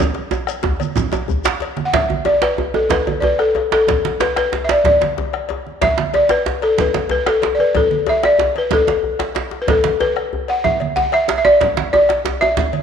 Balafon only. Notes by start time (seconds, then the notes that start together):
1.85 F#5
1.94 E5
2.26 D5
2.42 B4
2.75 A4
2.91 B4
3.20 B4 D5
3.39 A4
3.73 A4
4.21 B4
4.38 B4
4.65 E5
4.71 D5
4.86 D5
5.83 E5
6.15 D5
6.31 B4
6.63 A4
6.80 B4
7.11 B4
7.28 A4
7.55 D5
7.60 B4
7.77 A4
8.09 E5
8.25 D5
8.58 B4
8.73 A4
9.62 B4
9.70 A4
10.01 B4
10.50 F#5
10.64 E5
10.96 F#5
11.14 E5
11.38 E5
11.45 D5
11.93 D5
12.41 E5